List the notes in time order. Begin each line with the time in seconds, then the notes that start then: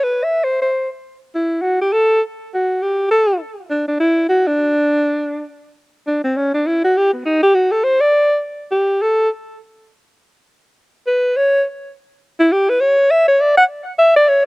0.04 B4
0.24 E5
0.44 C5
0.61 C5
1.35 E4
1.62 F#4
1.81 G4
1.92 A4
2.54 F#4
2.82 G4
3.11 A4
3.70 D4
3.88 D4
4.00 E4
4.29 F#4
4.47 D4
6.07 D4
6.24 C4
6.37 C#4
6.54 D4
6.66 E4
6.84 F#4
6.97 G4
7.14 B3
7.25 D#4
7.43 G4
7.55 F#4
7.71 A4
7.84 C5
8.01 D5
8.71 G4
9.02 A4
11.07 B4
11.37 C#5
12.40 E4
12.52 G4
12.69 B4
12.81 C#5
13.11 E5
13.28 C#5
13.41 D5
13.57 F#5
13.99 E5
14.16 D5
14.28 C#5